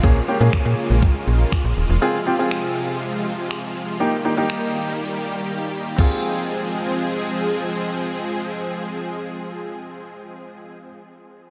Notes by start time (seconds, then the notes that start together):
Already playing: G#3 F4, downlifter
0.03 A#1 C#3 A#3 C#4 G#4, kick
0.28 A#3 C#4 G4
0.41 A#2 A#3 C#4 G#4
0.53 finger snap, kick
0.66 A#2
0.90 A#1
1.03 kick
1.28 A#1
1.52 finger snap, kick
1.65 A#1
1.77 D#1
1.89 E1
2.02 C3 F3 C4 F4 G#4
2.26 C4 F4 G4
2.39 C4 F4 G#4
2.51 finger snap
3.51 finger snap
4.00 D#3 G3 A#3 D#4 G4
4.25 A#3 D#4 G4
4.37 A#3 D#4 G4
4.50 finger snap
5.96 F3 G#3 C4 F4 G#4, kick, crash
6.00 G#4